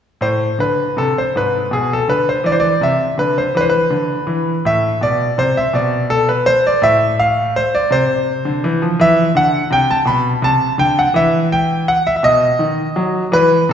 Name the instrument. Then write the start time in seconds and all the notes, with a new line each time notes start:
grand piano
0.21 A2 C5
0.59 D3 B4
0.97 C3 A4
1.18 C5
1.36 G#2 B4
1.71 B2 G#4
1.93 A4
2.08 D3 B4
2.29 C5
2.44 E3 D5
2.52 C5
2.60 D5
2.81 C3 E5
3.18 D3 B4
3.38 C5
3.55 E3 B4
3.61 C5
3.70 B4
3.90 D3
4.27 E3
4.65 A2 E5
5.01 B2 D5
5.38 C3 C5
5.57 E5
5.73 B2 D5
6.10 A4
6.29 B4
6.46 C5
6.67 D5
6.82 A2 E5
7.20 F5
7.56 C5
7.75 D5
7.90 C3 C5
8.45 D3
8.64 E3
8.82 F3
9.00 E3 E5
9.35 D3 F#5
9.71 C3 G5
9.91 A5
10.05 B2 B5
10.42 C3 A5
10.78 D3 G5
10.99 F#5
11.14 E3 E5
11.52 G5
11.88 F#5
12.07 E5
12.16 E5
12.23 B2 D#5
12.59 D#3
12.96 F#3
13.32 E3 B4
13.69 C3